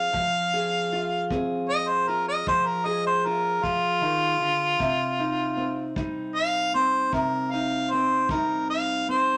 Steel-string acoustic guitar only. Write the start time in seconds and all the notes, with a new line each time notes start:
Already playing: F3 C4
0.13 F3
0.54 G#4
0.92 F4
1.31 C4 G#4
2.09 F4
2.47 F3
2.85 G#4
3.26 F4
3.63 F3
4.01 D#3
4.40 D3
4.79 C3
5.19 D#4
5.57 C4
5.96 G3 D#4
6.74 C4
7.12 C3
7.53 D#4
7.93 C4
8.31 G3 D#4
9.09 C4